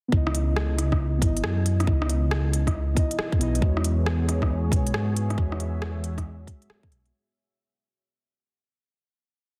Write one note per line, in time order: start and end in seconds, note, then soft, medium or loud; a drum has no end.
0.08 1.17 B3 medium
0.12 1.23 C#2 loud
0.12 1.20 E4 medium
0.12 kick loud
0.17 1.22 D#5 medium
0.27 cross-stick medium
0.35 closed hi-hat medium
0.56 cross-stick loud
0.78 cross-stick soft
0.78 closed hi-hat medium
0.92 kick medium
0.92 cross-stick medium
1.18 1.42 G#1 medium
1.18 1.82 B3 medium
1.18 kick loud
1.18 closed hi-hat medium
1.23 1.86 E4 medium
1.23 1.88 D#5 medium
1.37 closed hi-hat soft
1.44 1.87 F#2 medium
1.44 cross-stick loud
1.66 closed hi-hat medium
1.80 2.93 B3 medium
1.80 cross-stick medium
1.80 closed hi-hat soft
1.87 2.96 C#2 loud
1.87 7.13 B3 medium
1.87 2.95 E4 medium
1.87 kick loud
1.92 2.97 D#5 medium
2.02 cross-stick medium
2.10 closed hi-hat medium
2.31 5.05 E4 medium
2.31 cross-stick loud
2.52 7.12 G#4 medium
2.52 closed hi-hat medium
2.67 7.12 C#5 medium
2.67 kick medium
2.67 cross-stick soft
2.67 closed hi-hat soft
2.95 3.38 B3 medium
2.95 3.39 E4 medium
2.95 kick loud
2.95 closed hi-hat medium
2.99 3.40 D#5 medium
3.11 closed hi-hat soft
3.19 cross-stick loud
3.32 kick loud
3.39 3.61 B1 loud
3.39 3.60 B3 medium
3.39 3.61 E4 medium
3.39 closed hi-hat medium
3.43 3.62 D#5 loud
3.55 closed hi-hat soft
3.59 4.73 E2 loud
3.59 4.67 G#3 medium
3.59 kick loud
3.63 4.71 F#4 medium
3.68 4.73 C#5 medium
3.77 cross-stick medium
3.84 closed hi-hat medium
4.06 7.12 F#4 medium
4.06 cross-stick loud
4.25 7.12 E5 medium
4.25 cross-stick soft
4.25 closed hi-hat medium
4.42 kick medium
4.42 cross-stick soft
4.69 4.92 B1 medium
4.69 5.33 G#3 medium
4.69 5.36 F#4 medium
4.69 kick loud
4.73 5.38 C#5 medium
4.73 closed hi-hat medium
4.87 closed hi-hat soft
4.94 5.37 G#2 medium
4.94 cross-stick loud
5.17 closed hi-hat medium
5.30 6.43 G#3 medium
5.30 cross-stick medium
5.30 closed hi-hat soft
5.38 6.46 E2 loud
5.38 6.45 F#4 medium
5.38 6.47 C#5 medium
5.38 kick loud
5.52 cross-stick medium
5.60 closed hi-hat medium
5.82 cross-stick loud
6.04 closed hi-hat medium
6.18 kick medium
6.18 cross-stick soft
6.18 closed hi-hat soft
6.47 kick loud
6.47 closed hi-hat medium
6.62 closed hi-hat soft
6.70 cross-stick loud
6.83 kick loud
6.91 7.12 B1 medium
6.91 closed hi-hat medium
7.06 closed hi-hat soft